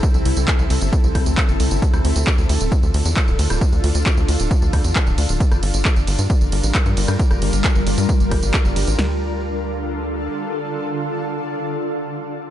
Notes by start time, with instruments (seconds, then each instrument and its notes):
Already playing: ambient pad C3 C4 E4 A4
0.03 kick, closed hi-hat, tambourine
0.14 analog synth bass C2, closed hi-hat, tambourine
0.25 analog synth bass C2, open hi-hat, ride
0.37 analog synth bass C2, closed hi-hat, tambourine
0.48 kick, clap, closed hi-hat, tambourine
0.59 analog synth bass C2, closed hi-hat, tambourine
0.70 analog synth bass C2, open hi-hat, ride
0.81 analog synth bass G1, closed hi-hat, tambourine
0.93 kick, closed hi-hat, tambourine
1.04 analog synth bass C2, closed hi-hat, tambourine
1.15 analog synth bass C2, kick, cross-stick, open hi-hat, ride
1.26 analog synth bass D2, closed hi-hat, tambourine
1.37 kick, clap, closed hi-hat, tambourine
1.49 analog synth bass G1, closed hi-hat, tambourine
1.60 analog synth bass C2, open hi-hat, ride
1.71 analog synth bass G1, closed hi-hat, tambourine
1.82 ambient pad D3 D4 F4, kick, closed hi-hat, tambourine
1.93 analog synth bass D2, cross-stick, closed hi-hat, tambourine
2.05 analog synth bass D2, open hi-hat, ride
2.16 analog synth bass D2, closed hi-hat, tambourine
2.27 kick, clap, closed hi-hat, tambourine
2.38 analog synth bass D2, closed hi-hat, tambourine
2.49 analog synth bass D2, open hi-hat, ride
2.61 analog synth bass D1, closed hi-hat, tambourine
2.72 kick, closed hi-hat, tambourine
2.83 analog synth bass D2, closed hi-hat, tambourine
2.94 analog synth bass D2, open hi-hat, ride
3.05 analog synth bass E2, closed hi-hat, tambourine
3.17 kick, clap, closed hi-hat, tambourine
3.28 analog synth bass D1, closed hi-hat, tambourine
3.39 analog synth bass D2, open hi-hat, ride
3.50 analog synth bass D1, cross-stick, closed hi-hat, tambourine
3.61 kick, closed hi-hat, tambourine
3.72 analog synth bass D2, closed hi-hat, tambourine
3.84 analog synth bass D2, open hi-hat, ride
3.95 analog synth bass D2, closed hi-hat, tambourine
4.06 kick, clap, closed hi-hat, tambourine
4.17 analog synth bass D2, closed hi-hat, tambourine
4.28 analog synth bass D2, open hi-hat, ride
4.40 analog synth bass D1, closed hi-hat, tambourine
4.51 kick, closed hi-hat, tambourine
4.62 analog synth bass D2, closed hi-hat, tambourine
4.73 analog synth bass D2, kick, cross-stick, open hi-hat, ride
4.84 analog synth bass E2, closed hi-hat, tambourine
4.96 kick, clap, closed hi-hat, tambourine
5.07 analog synth bass D1, closed hi-hat, tambourine
5.18 analog synth bass D2, open hi-hat, ride
5.29 analog synth bass D1, closed hi-hat, tambourine
5.40 ambient pad G3 F4 A#4, kick, closed hi-hat, tambourine
5.51 analog synth bass G1, cross-stick, closed hi-hat, tambourine
5.63 analog synth bass G1, open hi-hat, ride
5.74 analog synth bass G1, closed hi-hat, tambourine
5.85 kick, clap, closed hi-hat, tambourine
5.96 analog synth bass G1, closed hi-hat, tambourine
6.07 analog synth bass G1, open hi-hat, ride
6.19 analog synth bass G2, closed hi-hat, tambourine
6.30 kick, closed hi-hat, tambourine
6.41 analog synth bass G1, closed hi-hat, tambourine
6.52 analog synth bass G1, open hi-hat, ride
6.63 analog synth bass A1, closed hi-hat, tambourine
6.75 kick, clap, closed hi-hat, tambourine
6.86 analog synth bass G2, closed hi-hat, tambourine
6.97 analog synth bass G1, open hi-hat, ride
7.08 analog synth bass G2, cross-stick, closed hi-hat, tambourine
7.19 kick, closed hi-hat, tambourine
7.31 analog synth bass G1, cross-stick, closed hi-hat, tambourine
7.42 analog synth bass G1, open hi-hat, ride
7.53 analog synth bass G1, closed hi-hat, tambourine
7.64 kick, clap, closed hi-hat, tambourine
7.75 analog synth bass G1, closed hi-hat, tambourine
7.87 analog synth bass G1, open hi-hat, ride
7.98 analog synth bass G2, closed hi-hat, tambourine
8.09 kick, closed hi-hat, tambourine
8.20 analog synth bass G1, closed hi-hat, tambourine
8.31 analog synth bass G1, kick, cross-stick, open hi-hat, ride
8.43 analog synth bass G1, closed hi-hat, tambourine
8.54 kick, clap, closed hi-hat, tambourine
8.65 analog synth bass G1, closed hi-hat, tambourine
8.76 analog synth bass G1, open hi-hat, ride
8.87 analog synth bass A1, closed hi-hat, tambourine
8.99 analog synth bass D2, ambient pad D3 D4 F4 A4, snare